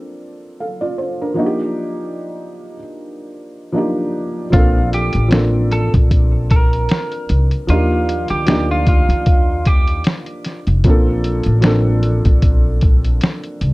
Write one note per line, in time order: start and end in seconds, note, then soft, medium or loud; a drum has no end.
0.00 1.34 F3 medium
0.00 1.36 A#3 medium
0.00 1.39 C4 medium
0.00 1.22 D4 medium
0.00 0.61 A4 medium
0.60 0.81 A4 soft
0.60 0.81 F5 medium
0.81 0.98 F4 medium
0.81 0.97 D5 medium
0.98 1.19 C5 medium
1.22 1.35 D4 soft
1.22 1.58 A#4 medium
1.34 2.72 F3 medium
1.34 2.73 A#3 medium
1.34 2.74 D4 medium
1.38 2.74 D#4 medium
1.38 1.46 F#4 medium
1.46 2.78 G4 medium
3.72 4.42 F3 medium
3.72 4.42 A#3 medium
3.72 4.43 D4 medium
3.72 4.44 D#4 medium
3.78 4.45 G4 medium
4.50 5.11 A#1 medium
4.50 5.20 F3 medium
4.50 5.21 A#3 medium
4.50 5.22 C4 medium
4.50 4.89 F4 loud
4.50 kick loud
4.50 closed hi-hat medium
4.54 5.22 D4 medium
4.54 5.23 A4 medium
4.93 5.29 G4 medium
4.93 closed hi-hat medium
5.13 5.90 A1 medium
5.13 closed hi-hat medium
5.28 6.67 F3 medium
5.28 6.67 A#3 medium
5.28 6.68 C4 medium
5.28 6.69 D4 medium
5.28 closed hi-hat medium
5.32 6.69 A4 medium
5.32 snare loud
5.72 5.92 A4 medium
5.72 closed hi-hat medium
5.94 6.86 A#1 medium
5.94 kick medium
5.94 closed hi-hat medium
6.11 kick loud
6.11 closed hi-hat medium
6.50 7.65 A#4 medium
6.50 kick loud
6.50 closed hi-hat medium
6.73 closed hi-hat soft
6.89 snare loud
6.89 closed hi-hat medium
7.12 closed hi-hat soft
7.29 7.50 C2 medium
7.29 closed hi-hat medium
7.51 closed hi-hat soft
7.67 8.26 D#2 medium
7.67 8.37 F3 medium
7.67 8.38 A#3 medium
7.67 8.38 D4 medium
7.67 8.39 D#4 medium
7.67 8.28 F4 loud
7.67 closed hi-hat medium
7.73 8.39 G4 medium
8.09 closed hi-hat medium
8.28 9.06 D2 medium
8.28 8.46 G4 medium
8.28 closed hi-hat medium
8.45 9.83 F3 medium
8.45 9.84 A#3 medium
8.45 9.85 D4 medium
8.45 8.68 G4 medium
8.45 snare loud
8.45 closed hi-hat medium
8.50 9.85 D#4 medium
8.50 9.86 G4 medium
8.71 8.86 F4 medium
8.87 9.67 F4 medium
8.87 kick loud
8.87 closed hi-hat medium
9.09 10.01 D#2 medium
9.09 closed hi-hat medium
9.26 kick medium
9.26 closed hi-hat medium
9.65 10.02 G4 medium
9.65 kick medium
9.65 closed hi-hat medium
9.87 closed hi-hat soft
10.04 snare loud
10.04 closed hi-hat medium
10.26 closed hi-hat soft
10.45 snare soft
10.45 closed hi-hat medium
10.67 10.84 F1 medium
10.67 closed hi-hat soft
10.84 11.42 A#1 medium
10.84 11.53 F3 medium
10.84 11.54 A#3 medium
10.84 11.55 C4 medium
10.84 kick loud
10.84 closed hi-hat medium
10.88 11.55 D4 medium
10.88 11.56 A4 loud
11.24 closed hi-hat medium
11.43 12.21 A1 loud
11.43 closed hi-hat medium
11.61 12.99 F3 medium
11.61 12.99 A#3 medium
11.61 13.00 C4 medium
11.61 13.00 D4 medium
11.61 snare loud
11.61 closed hi-hat medium
11.66 13.01 A4 loud
12.03 closed hi-hat medium
12.25 13.18 A#1 medium
12.25 kick medium
12.25 closed hi-hat medium
12.42 kick medium
12.42 closed hi-hat medium
12.81 kick loud
12.81 closed hi-hat medium
13.05 closed hi-hat soft
13.21 snare loud
13.21 closed hi-hat medium
13.44 closed hi-hat soft
13.61 13.73 C2 medium
13.61 closed hi-hat medium